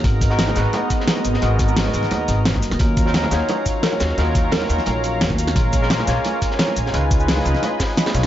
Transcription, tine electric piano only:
X:1
M:4/4
L:1/16
Q:1/4=174
K:Ebm
V:1 name="Tine electric piano"
[A,CEGB]3 [A,CEGB]3 [A,CEGc] z8 z | [A,CEGB]3 [A,CEGB]3 [A,CEGB]8- [A,CEGB]2 | [G,DEFB]3 [G,DEFB]3 [G,DEFd] z8 z | [G,DEFB]3 [G,DEFB]3 [G,DEFB]8- [G,DEFB]2 |
[A,B,DFB]3 [A,B,DFB]3 [A,B,DFd] z8 z | [A,DEFc]3 [A,DEFc]3 [A,DEFc]8 [A,DEFd]2 |]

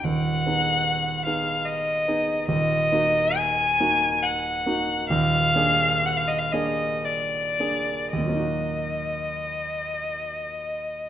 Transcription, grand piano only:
X:1
M:3/4
L:1/8
Q:1/4=66
K:Ebm
V:1 name="Grand piano"
[E,,,E,,] [CEA]2 [CEA]2 [CEA] | [E,,,E,,] [B,EG]2 [B,EG]2 [B,EG] | [E,,,E,,] [B,=DA]2 [B,DA]2 [B,DA] | [E,,B,,G,B,EG]6 |]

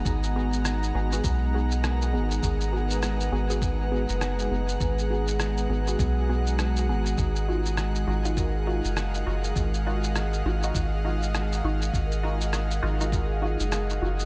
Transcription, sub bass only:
X:1
M:4/4
L:1/16
Q:"Swing 16ths" 1/4=101
K:G#dor
V:1 name="Sub bass" clef=bass
G,,,6 G,,,2 B,,,6 G,,,2 | G,,,6 G,,,4- G,,, F,,,3 F,,,2 | G,,,6 G,,,2 B,,,6 G,,,2 | G,,,6 G,,,4- G,,, F,,,3 F,,,2 |
G,,,6 G,,,2 G,,,6 G,,,2 | G,,,6 G,,,4- G,,, F,,,3 F,,,2 |]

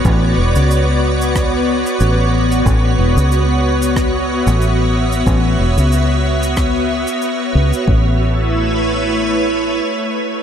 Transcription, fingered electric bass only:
X:1
M:4/4
L:1/16
Q:"Swing 16ths" 1/4=92
K:Bdor
V:1 name="Fingered electric bass" clef=bass
A,,,2 E,,, C,,8 z A,,,4 | A,,,2 E,,, C,,8 A,,,4- A,,, | A,,,2 E,,, C,,8 z3 C,, z | A,,,12 z4 |]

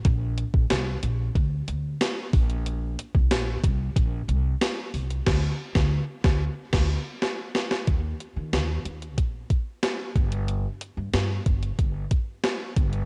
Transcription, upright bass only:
X:1
M:4/4
L:1/16
Q:1/4=92
K:Eb
V:1 name="Upright bass" clef=bass
B,,,3 B,,, C,,2 B,,,2 D,,2 D,,2 z2 B,,,2- | B,,,3 C,, B,,,2 C,,2 B,,,2 C,,2 z2 C,,2 | D,,2 z D,,2 z D,,2 z D,,2 z4 z | E,,2 z E, E,,2 E,,2 B,,,2 z4 G,,,2- |
G,,,2 z G,, G,,2 G,,,2 G,,,2 z4 G,,,2 |]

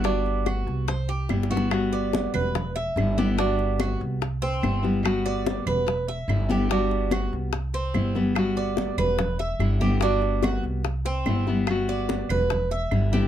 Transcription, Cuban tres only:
X:1
M:4/4
L:1/8
Q:1/4=145
K:G
V:1 name="Cuban tres"
D2 F2 c G2 F | z d2 B2 e2 G | D2 F z2 C2 z | z d2 B2 e2 G |
D2 F z2 C2 z | z d2 B2 e2 G | D2 F z2 C2 z | z d2 B2 e2 G |]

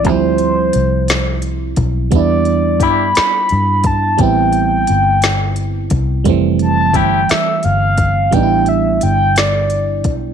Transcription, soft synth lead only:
X:1
M:6/8
L:1/8
Q:3/8=58
K:Am
V:1 name="Soft synth lead"
c4- c z | d2 b3 a | g4- g z | z a g e f2 |
g e g d2 z |]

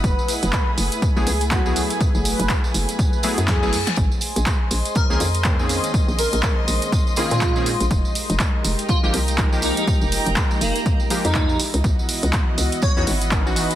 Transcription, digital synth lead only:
X:1
M:4/4
L:1/16
Q:"Swing 16ths" 1/4=122
K:Gblyd
V:1 name="Digital synth lead"
z16 | z16 | z8 B B z6 | z2 B B z6 F6 |
z8 F F z4 E E | z6 B, z4 E3 z2 | z8 d d z6 |]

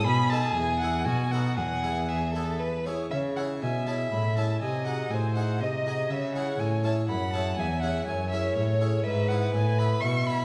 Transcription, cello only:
X:1
M:3/4
L:1/8
Q:1/4=121
K:E
V:1 name="Cello" clef=bass
B,,2 E,,2 B,,2 | E,,4- E,, z | [K:C#m] C,2 B,,2 A,,2 | ^B,,2 A,,2 B,,2 |
C,2 A,,2 F,,2 | E,,2 F,,2 A,,2 | [K:E] G,,2 A,,2 B,,2 |]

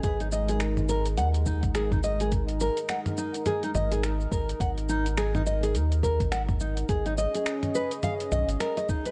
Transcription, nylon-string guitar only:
X:1
M:4/4
L:1/16
Q:"Swing 16ths" 1/4=105
K:C#mix
V:1 name="Nylon-string guitar"
G D d G z2 A z f z D z G D d G | z2 A z f z D z G D d G z2 A z | f z D z G D d G z2 A z f z D z | G D d G z2 B z e z d z A d D B |]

